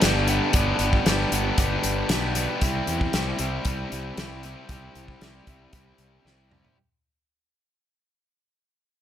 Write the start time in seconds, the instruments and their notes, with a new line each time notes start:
0.02 fingered electric bass G1, distorted electric guitar B3 D4 G4, snare, closed hi-hat
0.28 distorted electric guitar B3 D4 G4, closed hi-hat
0.53 fingered electric bass G1, distorted electric guitar B3 D4 G4, kick, closed hi-hat
0.79 fingered electric bass G1, closed hi-hat
0.93 kick
1.06 fingered electric bass G1, distorted electric guitar B3 D4 G4, snare, closed hi-hat
1.32 fingered electric bass G1, distorted electric guitar B3 D4 G4, closed hi-hat
1.58 fingered electric bass G1, distorted electric guitar B3 D4 G4, kick, closed hi-hat
1.83 fingered electric bass G1, closed hi-hat
2.09 fingered electric bass B1, distorted electric guitar B3 D4 G4, snare, closed hi-hat
2.35 distorted electric guitar B3 D4 G4, closed hi-hat
2.61 fingered electric bass C2, distorted electric guitar G3 C4 E4 G4, kick, closed hi-hat
2.87 fingered electric bass E2, closed hi-hat
3.01 kick
3.13 fingered electric bass C2, distorted electric guitar G3 C4 E4 G4, snare, closed hi-hat
3.39 fingered electric bass C2, distorted electric guitar G3 C4 E4 G4, closed hi-hat
3.65 fingered electric bass C2, distorted electric guitar G3 C4 E4 G4, kick, closed hi-hat
3.92 fingered electric bass C2, closed hi-hat
4.17 fingered electric bass C2, distorted electric guitar G3 C4 E4 G4, snare, closed hi-hat
4.43 distorted electric guitar G3 C4 E4 G4, closed hi-hat
4.69 fingered electric bass C2, distorted electric guitar G3 C4 E4 G4, kick, closed hi-hat
4.95 fingered electric bass C2, closed hi-hat
5.08 kick
5.21 fingered electric bass C2, distorted electric guitar G3 C4 E4 G4, snare, closed hi-hat
5.47 fingered electric bass C2, distorted electric guitar G3 C4 E4 G4, kick, closed hi-hat
5.73 fingered electric bass C2, distorted electric guitar G3 C4 E4 G4, kick, closed hi-hat
5.98 fingered electric bass C2, closed hi-hat
6.25 fingered electric bass C2, distorted electric guitar G3 C4 E4 G4, snare
6.51 distorted electric guitar G3 C4 E4 G4, mid tom
6.65 floor tom